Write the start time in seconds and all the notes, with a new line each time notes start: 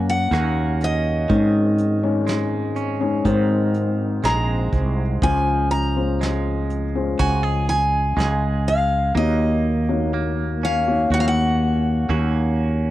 Already playing: F#1 F#2 A#3 C#4 F#4 C#5
0.10 F#5
0.31 D#2 A#3 C#4 F#4, cross-stick, closed hi-hat
0.81 D#5, closed hi-hat
1.29 G#1 G#2 D#3 G#3 C#4 D#4 C#5, kick, closed hi-hat
1.78 closed hi-hat
2.03 G#3 C#4 D#4 C#5
2.27 G#3, snare, closed hi-hat
2.76 C#4, closed hi-hat
3.00 G#3 C#4 D#4 C#5
3.25 G#1 G#2 D#3 G#3 C4 D#4 C5, kick, closed hi-hat
3.74 closed hi-hat
4.23 A#1 G#3 C4 G#4 A#5, snare, closed hi-hat
4.72 C2, kick, closed hi-hat
5.22 C#2 C#3 F3 G#3 C#4 F4 C5 G#5, kick, closed hi-hat
5.71 A#5, closed hi-hat
5.97 G#3 C#4 F4 C5
6.21 G#3, snare, closed hi-hat
6.70 closed hi-hat
6.95 G#3 C#4 F4 C5
7.19 C#2 F#4 G#5, kick, closed hi-hat
7.43 G#4
7.69 G#5, closed hi-hat
8.17 C#2 G#3 G#4, snare, closed hi-hat
8.67 F5, closed hi-hat
9.15 D#2 D#3 A#3 D#4 F#4 C#5 D#5
9.89 A#3 D#4 F#4 C#5
10.14 A#3
10.63 C#4 F5
10.88 A#3 D#4 F#4 C#5
11.10 D#2 F#4 F#5
11.20 F5
11.28 F#5
12.09 D#2 A#3 C#4 F#4